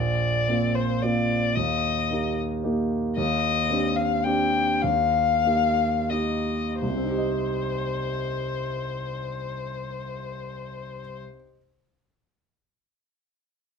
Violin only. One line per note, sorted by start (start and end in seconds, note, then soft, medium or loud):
0.00 0.76 D5 medium
0.75 1.04 C5 medium
1.02 1.57 D5 medium
1.56 2.36 D#5 medium
3.17 3.98 D#5 medium
3.96 4.26 F5 medium
4.24 4.84 G5 medium
4.82 6.12 F5 medium
6.10 6.80 D#5 medium
6.81 11.20 C5 medium